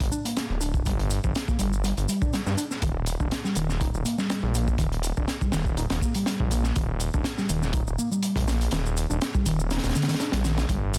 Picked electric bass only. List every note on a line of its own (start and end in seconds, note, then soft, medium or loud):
0.12 0.24 D4 loud
0.25 0.60 A#3 medium
0.61 0.84 D4 medium
0.86 0.91 G3 medium
1.24 1.28 F3 medium
1.48 1.58 A#3 medium
1.59 1.72 G3 medium
1.84 1.90 G3 medium
2.08 2.20 G3 loud
2.22 2.32 D4 medium
2.33 2.39 G3 medium
2.57 2.63 D4 loud
2.82 2.88 D#3 medium
3.20 3.25 D4 medium
3.45 3.55 G3 medium
3.56 3.69 D#3 loud
3.81 3.86 D#4 medium
4.05 4.17 A#3 loud
4.18 4.53 G3 medium
4.54 4.78 A#3 medium
4.79 4.85 D#3 medium
5.17 5.22 D4 medium
5.42 5.52 G3 medium
5.53 5.65 D#3 loud
5.78 5.83 D#4 medium
6.02 6.14 A#3 loud
6.15 6.50 G3 medium
6.51 6.75 A#3 medium
6.76 6.81 D#3 medium
7.14 7.19 D4 medium
7.38 7.49 G3 medium
7.49 7.62 D#3 loud
7.74 7.80 D#4 medium
7.98 8.11 A#3 loud
8.11 8.47 G3 medium
8.47 8.71 A#3 medium
8.72 8.78 D#3 medium
9.10 9.15 D4 medium
9.35 9.45 G3 medium
9.46 9.59 D#3 loud
9.71 9.77 D#4 medium
9.96 10.08 D3 medium
10.09 10.14 D#3 medium
10.20 10.29 D4 medium
10.33 10.44 G3 medium
10.45 10.57 D#3 loud
10.69 10.75 G3 medium